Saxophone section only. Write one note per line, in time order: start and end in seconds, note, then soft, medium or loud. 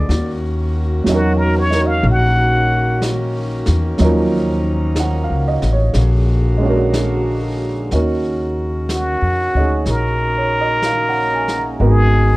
0.08 5.78 D#3 medium
0.08 5.78 A#3 medium
0.08 5.78 C#4 medium
0.08 3.95 F#4 medium
4.00 5.78 D#4 medium
5.95 7.90 D3 medium
5.95 7.91 G#3 medium
5.95 7.90 A#3 medium
5.95 7.90 F#4 medium
7.92 12.37 C#3 medium
7.92 9.85 C#4 medium
7.92 11.77 F#4 medium
9.87 11.78 D#4 medium
11.79 12.37 G#3 medium
11.79 12.37 B3 medium
11.79 12.37 F#4 medium